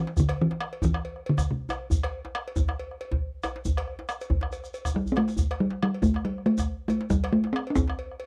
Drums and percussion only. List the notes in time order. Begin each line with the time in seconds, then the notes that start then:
0.07 djembe slap
0.17 bombo rim, bombo low, djembe bass, shekere
0.29 bombo rim, cowbell
0.51 bombo rim, djembe slap
0.61 bombo rim
0.73 cowbell
0.82 bombo low, djembe tone, djembe bass, shekere
0.94 bombo rim, djembe slap
1.05 cowbell
1.16 bombo rim
1.26 cowbell
1.37 bombo rim, bombo low, djembe slap, djembe bass, shekere
1.69 bombo rim, cowbell, djembe slap, djembe tone, shekere
1.90 bombo rim, bombo low, djembe bass, shekere
2.03 bombo rim, cowbell
2.25 bombo rim, djembe slap
2.35 bombo rim
2.48 cowbell
2.56 bombo low, djembe tone, djembe bass, shekere
2.68 bombo rim, djembe slap
2.79 cowbell
2.91 bombo rim
3.01 cowbell
3.12 bombo low, djembe slap, djembe bass
3.43 bombo rim, cowbell, djembe slap, djembe tone, shekere
3.56 djembe slap
3.65 bombo low, djembe bass, shekere
3.77 bombo rim, cowbell
3.87 bombo rim
3.99 bombo rim, djembe slap
4.09 bombo rim, shekere
4.21 bombo rim, cowbell, shekere
4.30 bombo low, djembe slap, djembe tone, djembe bass
4.41 bombo rim, djembe slap
4.51 bombo rim, cowbell, djembe slap, shekere
4.64 bombo rim, shekere
4.74 cowbell, shekere
4.85 bombo rim, bombo low, djembe bass, shekere
4.94 bombo rim, djembe bass
5.06 djembe bass, shekere
5.16 bombo rim, cowbell, djembe slap
5.28 djembe slap, shekere
5.36 bombo rim, bombo low, djembe bass, shekere
5.51 bombo rim, cowbell
5.70 bombo rim, djembe slap
5.83 bombo rim
5.94 cowbell
6.02 bombo low, djembe tone, djembe bass, shekere
6.14 bombo rim, djembe slap
6.25 cowbell
6.38 bombo rim
6.46 cowbell
6.58 bombo rim, bombo low, djembe slap, djembe bass, shekere
6.88 cowbell, djembe slap, djembe tone, shekere
7.01 djembe slap
7.10 bombo rim, bombo low, djembe bass, shekere
7.24 bombo rim, cowbell
7.44 bombo rim, djembe slap
7.56 bombo rim
7.67 cowbell
7.76 bombo low, djembe tone, djembe bass, shekere
7.87 bombo rim, djembe slap
7.99 cowbell
8.11 bombo rim
8.20 cowbell